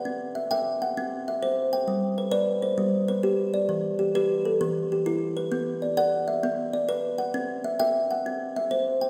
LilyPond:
\new Staff \with { instrumentName = "Kalimba" } { \time 12/8 \key c \lydian \tempo 4. = 132 << { fis''8 r8 e''8 g''4 fis''4. e''4. g''8~ | g''8 r8 b'8 d''4 c''4. b'4. d''8~ | d''8 r8 g'8 b'4 a'4. g'4. b'8~ | b'8 r8 d''8 fis''4 e''4. d''4. fis''8~ |
fis''8 r8 e''8 g''4 fis''4. e''4. g''8 | } \\ { c'4 r8 e''4 r8 c'4 r8 c''4 r8 | g4 r8 b'4 r8 g4 r8 g'4 r8 | e4 r8 g'4 r8 e4 r8 e'4 r8 | b4 r8 d''4 r8 b4 r8 b'4 r8 |
c'4 r8 e''4 r8 c'4 r8 c''4 r8 | } >> }